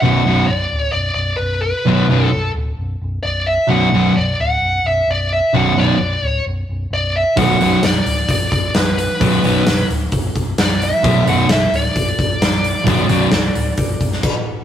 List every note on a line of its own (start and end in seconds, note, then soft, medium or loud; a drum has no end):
0.01 0.20 B0 medium
0.01 0.22 B1 medium
0.01 0.22 F#2 medium
0.01 0.23 B2 medium
0.01 0.49 F#5 medium
0.25 0.42 B0 medium
0.25 0.45 B1 medium
0.25 0.45 F#2 medium
0.25 0.45 B2 medium
0.46 0.65 B0 medium
0.46 0.91 D5 medium
0.72 0.88 D1 medium
0.92 1.10 B0 medium
0.92 1.13 D5 medium
1.14 1.32 B0 medium
1.14 1.37 D5 medium
1.37 1.71 B0 medium
1.37 1.61 B4 medium
1.62 2.25 B4 medium
1.85 2.02 B0 medium
1.85 2.05 B1 medium
1.85 2.05 F#2 medium
1.85 2.06 B2 medium
2.09 2.25 B0 medium
2.09 2.28 B1 medium
2.09 2.28 F#2 medium
2.09 2.29 B2 medium
2.25 2.51 A4 medium
2.33 2.49 B0 medium
2.55 2.71 D1 medium
2.79 2.95 B0 medium
3.02 3.17 B0 medium
3.23 3.56 B0 medium
3.23 3.47 D5 medium
3.46 3.70 E5 medium
3.69 3.85 B0 medium
3.69 3.88 B1 medium
3.69 3.89 F#2 medium
3.69 3.89 B2 medium
3.69 4.17 F#5 loud
3.93 4.09 B0 medium
3.93 4.12 B1 medium
3.93 4.12 F#2 medium
3.93 4.12 B2 loud
4.17 4.33 B0 medium
4.17 4.40 D5 medium
4.40 4.55 D1 medium
4.40 4.87 F#5 loud
4.62 4.78 B0 medium
4.84 5.00 B0 medium
4.84 5.10 E5 medium
5.07 5.40 B0 medium
5.07 5.31 D5 medium
5.33 5.56 E5 medium
5.54 5.70 B0 medium
5.54 5.72 B1 medium
5.54 5.73 F#2 medium
5.54 5.73 B2 medium
5.54 5.76 F#5 medium
5.76 5.92 B0 medium
5.76 5.95 B1 medium
5.76 5.96 F#2 medium
5.76 5.96 B2 medium
5.76 6.25 D5 medium
6.00 6.16 B0 medium
6.22 6.38 D1 medium
6.22 6.43 C#5 medium
6.46 6.62 B0 medium
6.69 6.85 B0 medium
6.91 7.23 B0 medium
6.91 7.16 D5 medium
7.16 7.38 E5 medium
7.37 7.53 B0 medium
7.37 7.56 B1 medium
7.37 7.57 F#2 medium
7.37 7.57 B2 medium
7.37 7.85 F#5 medium
7.37 kick loud
7.37 open hi-hat medium
7.59 7.75 B0 medium
7.59 7.79 B1 medium
7.59 7.79 F#2 medium
7.59 7.80 B2 medium
7.59 open hi-hat soft
7.83 7.99 B0 medium
7.83 8.30 D5 medium
7.83 snare loud
7.83 open hi-hat medium
8.06 8.22 D1 medium
8.06 open hi-hat soft
8.28 8.45 B0 medium
8.28 8.50 D5 medium
8.28 kick medium
8.28 open hi-hat medium
8.52 8.68 B0 medium
8.52 8.76 D5 medium
8.52 kick medium
8.52 open hi-hat soft
8.74 9.07 B0 medium
8.74 8.97 B4 medium
8.74 snare loud
8.74 open hi-hat medium
8.98 9.86 B4 medium
8.98 open hi-hat medium
9.21 9.37 B0 medium
9.21 9.40 B1 medium
9.21 9.40 F#2 medium
9.21 9.40 B2 medium
9.21 kick loud
9.21 open hi-hat medium
9.43 9.59 B0 medium
9.43 9.63 B1 medium
9.43 9.63 F#2 medium
9.43 9.63 B2 loud
9.43 open hi-hat soft
9.66 9.83 B0 medium
9.66 snare medium
9.66 open hi-hat medium
9.90 10.06 D1 medium
9.90 open hi-hat soft
10.12 10.29 B0 medium
10.12 kick medium
10.12 open hi-hat medium
10.36 10.52 B0 medium
10.36 kick medium
10.36 open hi-hat soft
10.58 10.91 B0 medium
10.58 10.81 D5 medium
10.58 snare loud
10.58 open hi-hat medium
10.82 11.28 E5 medium
10.82 open hi-hat soft
11.04 11.20 B0 medium
11.04 11.23 B1 medium
11.04 11.23 F#2 medium
11.04 11.23 B2 medium
11.04 kick loud
11.04 open hi-hat medium
11.27 11.43 B0 medium
11.27 11.46 B1 medium
11.27 11.46 F#2 medium
11.27 11.46 B2 medium
11.27 11.51 F#5 medium
11.27 open hi-hat soft
11.49 11.65 B0 medium
11.49 11.74 E5 medium
11.49 snare loud
11.49 open hi-hat medium
11.71 11.88 D1 medium
11.71 open hi-hat soft
11.75 14.21 D5 medium
11.95 12.11 B0 medium
11.95 kick medium
11.95 open hi-hat medium
12.19 12.34 B0 medium
12.19 kick medium
12.19 open hi-hat soft
12.40 12.72 B0 medium
12.40 snare loud
12.40 open hi-hat medium
12.64 open hi-hat medium
12.87 13.03 B0 medium
12.87 13.05 B1 medium
12.87 13.05 F#2 medium
12.87 13.06 B2 medium
12.87 kick loud
12.87 open hi-hat medium
13.09 13.25 B0 medium
13.09 13.28 B1 medium
13.09 13.28 F#2 loud
13.09 13.28 B2 medium
13.09 open hi-hat medium
13.31 13.48 B0 medium
13.31 snare loud
13.31 open hi-hat medium
13.55 13.71 D1 medium
13.55 open hi-hat soft
13.77 13.94 B0 medium
13.77 kick medium
13.77 open hi-hat medium
14.01 14.17 B0 medium
14.01 kick medium
14.01 open hi-hat soft
14.12 snare soft
14.23 kick loud
14.23 crash medium